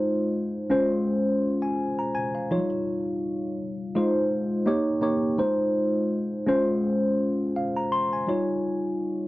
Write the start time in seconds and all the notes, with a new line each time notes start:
Already playing: G#3 D#4 F4 C5
0.70 G#3 C#4 F4 C5
1.62 G#5
1.99 A#5
2.15 G#5
2.35 F5
2.51 F3 D#4 F4 C#5
2.57 G3
3.95 G#3 D#4 F4 C5
4.66 A#3 D#4 G4 C#5
5.01 A#3 D#4 G4 C#5
5.38 G#3 D#4 F4 C5
6.47 G#3 C#4 F4 C5
7.56 F5
7.77 A#5
7.92 C6
8.13 G#5
8.27 G3 D#4 F4 C#5